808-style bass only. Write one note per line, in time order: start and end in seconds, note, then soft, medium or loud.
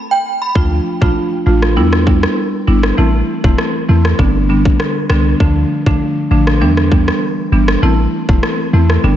0.55 0.80 D2 loud
1.02 1.13 B1 medium
1.46 1.78 A1 medium
1.77 2.26 E2 loud
2.68 2.92 G1 medium
2.98 3.23 A1 loud
3.44 3.56 E1 medium
3.89 4.14 E2 medium
4.19 4.68 G1 loud
5.10 5.35 C2 loud
5.40 5.65 D2 loud
5.86 5.98 B1 medium
6.31 6.63 A1 medium
6.61 7.11 E2 loud
7.52 7.77 G1 medium
7.83 8.07 A1 loud
8.29 8.40 E1 medium
8.73 8.98 E2 medium
9.04 9.16 G1 loud